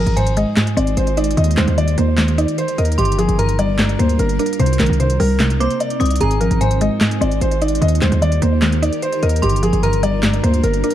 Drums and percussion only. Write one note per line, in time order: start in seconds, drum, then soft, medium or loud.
0.07 closed hi-hat soft
0.17 closed hi-hat medium
0.27 closed hi-hat medium
0.37 closed hi-hat medium
0.56 snare loud
0.56 clap medium
0.56 closed hi-hat medium
0.67 closed hi-hat medium
0.77 closed hi-hat medium
0.87 closed hi-hat soft
0.97 closed hi-hat medium
1.07 closed hi-hat medium
1.17 closed hi-hat medium
1.24 closed hi-hat medium
1.31 closed hi-hat medium
1.37 closed hi-hat medium
1.44 closed hi-hat medium
1.51 closed hi-hat medium
1.57 snare medium
1.57 clap medium
1.57 closed hi-hat medium
1.68 closed hi-hat soft
1.78 closed hi-hat medium
1.88 closed hi-hat medium
1.98 closed hi-hat medium
2.18 snare loud
2.18 clap loud
2.18 closed hi-hat medium
2.28 closed hi-hat medium
2.38 closed hi-hat medium
2.48 closed hi-hat soft
2.58 closed hi-hat medium
2.68 closed hi-hat medium
2.78 closed hi-hat medium
2.85 closed hi-hat medium
2.92 closed hi-hat medium
2.98 closed hi-hat medium
3.05 closed hi-hat medium
3.12 closed hi-hat medium
3.19 closed hi-hat medium
3.29 closed hi-hat medium
3.39 closed hi-hat medium
3.49 closed hi-hat medium
3.59 closed hi-hat medium
3.79 snare loud
3.79 clap medium
3.79 closed hi-hat medium
3.89 closed hi-hat medium
3.99 closed hi-hat medium
4.09 closed hi-hat soft
4.19 closed hi-hat medium
4.29 closed hi-hat medium
4.39 closed hi-hat medium
4.46 closed hi-hat medium
4.53 closed hi-hat medium
4.60 closed hi-hat medium
4.66 closed hi-hat medium
4.73 closed hi-hat medium
4.79 snare loud
4.79 clap medium
4.79 closed hi-hat medium
4.86 closed hi-hat medium
4.93 closed hi-hat soft
5.00 closed hi-hat medium
5.10 closed hi-hat medium
5.20 open hi-hat medium
5.40 snare loud
5.40 clap loud
5.40 closed hi-hat medium
5.50 closed hi-hat medium
5.61 closed hi-hat medium
5.70 closed hi-hat soft
5.80 closed hi-hat medium
5.90 closed hi-hat medium
6.01 closed hi-hat medium
6.05 closed hi-hat medium
6.11 closed hi-hat medium
6.16 closed hi-hat medium
6.21 closed hi-hat medium
6.31 closed hi-hat medium
6.41 closed hi-hat medium
6.51 closed hi-hat medium
6.61 closed hi-hat medium
6.71 closed hi-hat medium
6.81 closed hi-hat medium
7.01 snare loud
7.01 clap medium
7.01 closed hi-hat medium
7.11 closed hi-hat medium
7.22 closed hi-hat medium
7.31 closed hi-hat soft
7.41 closed hi-hat medium
7.51 closed hi-hat medium
7.62 closed hi-hat medium
7.68 closed hi-hat medium
7.75 closed hi-hat medium
7.82 closed hi-hat medium
7.88 closed hi-hat medium
7.95 closed hi-hat medium
8.02 snare medium
8.02 clap medium
8.02 closed hi-hat medium
8.12 closed hi-hat medium
8.22 closed hi-hat medium
8.32 closed hi-hat medium
8.42 closed hi-hat medium
8.62 snare loud
8.62 clap medium
8.62 closed hi-hat medium
8.72 closed hi-hat medium
8.83 closed hi-hat medium
8.93 closed hi-hat soft
9.02 closed hi-hat medium
9.12 closed hi-hat medium
9.23 closed hi-hat medium
9.29 closed hi-hat medium
9.36 closed hi-hat medium
9.43 closed hi-hat medium
9.49 closed hi-hat medium
9.56 closed hi-hat medium
9.63 closed hi-hat medium
9.73 closed hi-hat soft
9.83 closed hi-hat medium
9.93 closed hi-hat medium
10.03 closed hi-hat medium
10.23 snare loud
10.23 clap loud
10.23 closed hi-hat medium
10.33 closed hi-hat medium
10.44 closed hi-hat medium
10.54 closed hi-hat soft
10.64 closed hi-hat medium
10.74 closed hi-hat medium
10.84 closed hi-hat medium
10.90 closed hi-hat medium